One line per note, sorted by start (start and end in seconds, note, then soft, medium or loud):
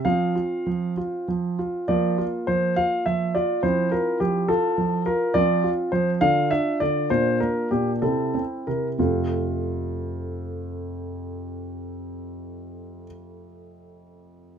0.05 0.35 F3 medium
0.05 1.84 C4 soft
0.05 0.34 F4 soft
0.05 0.93 F5 medium
0.36 0.65 F4 soft
0.66 0.96 F3 soft
0.97 1.27 F4 soft
1.28 1.58 F3 soft
1.59 1.87 F4 soft
1.88 2.17 F3 soft
1.88 3.59 A#3 soft
1.88 2.17 F4 soft
1.88 2.24 D5 medium
2.18 2.47 F4 soft
2.47 2.76 F3 soft
2.47 2.74 C5 medium
2.76 3.05 F4 soft
2.76 3.03 F5 medium
3.06 3.34 F3 soft
3.06 3.34 E5 medium
3.35 3.63 F4 soft
3.35 3.60 D5 medium
3.63 3.91 F3 soft
3.63 5.30 C4 soft
3.63 5.30 E4 soft
3.63 3.89 C5 medium
3.92 4.19 F4 soft
3.92 4.17 A#4 medium
4.20 4.48 F3 soft
4.20 4.48 G4 medium
4.48 4.76 F4 soft
4.48 5.01 A4 medium
4.78 5.05 F3 soft
5.06 5.33 F4 soft
5.06 5.34 A#4 medium
5.34 5.62 F3 medium
5.34 6.17 C4 soft
5.34 5.62 F4 soft
5.34 5.69 D5 medium
5.64 5.91 F4 soft
5.92 6.20 F3 soft
5.92 6.09 C5 medium
6.21 6.50 D3 medium
6.21 6.50 D4 soft
6.21 7.06 F4 soft
6.21 6.50 F5 medium
6.51 6.80 D4 soft
6.51 6.77 E5 medium
6.80 7.10 D3 soft
6.80 7.10 D5 medium
7.10 7.39 A#2 medium
7.10 7.98 D4 soft
7.10 7.98 F4 soft
7.10 7.37 C5 medium
7.40 7.70 A#3 soft
7.40 7.68 A#4 medium
7.71 8.02 A#2 soft
7.71 7.90 G4 medium
8.02 8.33 C3 soft
8.02 8.33 C4 soft
8.02 8.96 E4 soft
8.02 8.41 A4 medium
8.35 8.66 C4 soft
8.67 8.97 C3 soft
8.67 8.87 A#4 soft
8.98 13.04 F2 soft
8.98 13.04 C3 soft
8.98 13.05 A3 soft
8.98 13.05 C4 soft
8.98 13.05 F4 soft